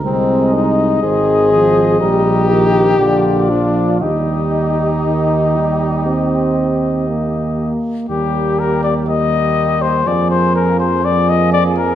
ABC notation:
X:1
M:4/4
L:1/16
Q:1/4=60
K:Eb
V:1 name="Trumpet"
e12 d4 | e12- e2 z2 | G2 B d e3 c d c B c d e d B |]
V:2 name="Flugelhorn"
B2 z2 c2 c2 B2 B2 F4 | G12- G2 z2 | G4 G4 A4 A4 |]
V:3 name="French horn"
C2 E2 A4 G6 D2 | E12- E2 z2 | B,4 B,4 B,4 B,4 |]
V:4 name="Euphonium" clef=bass
A,4 E,2 F,2 G,2 E,2 D,2 F,2 | G,4 E,2 G,2 C4 B,4 | G,4 G,4 F,4 F,4 |]
V:5 name="Tuba" clef=bass
C,,4 A,,,4 B,,,4 B,,,4 | E,,12- E,,2 z2 | E,,8 F,,8 |]